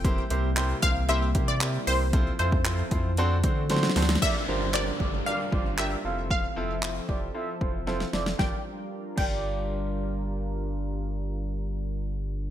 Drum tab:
CC |--------------------------------|--------------------------------|x-------------------------------|--------------------------------|
HH |x---x---x---x---x---x---x---o---|x---x---x---x---x---x---x---o---|--------------------------------|--------------------------------|
CP |--------x---------------x-------|--------x-----------------------|--------x---------------x-------|--------x-----------------------|
SD |--------------------------------|------------------------oooooooo|--------------------------------|------------------------o-o-o-o-|
BD |o-----------o-------o-----------|o-----o-----o-------o-----------|o-----------o-------o-----------|o-----------o-------o-----------|

CC |------------x-------------------|--------------------------------|
HH |--------------------------------|--------------------------------|
CP |--------------------------------|--------------------------------|
SD |o-------------------------------|--------------------------------|
BD |o-----------o-------------------|--------------------------------|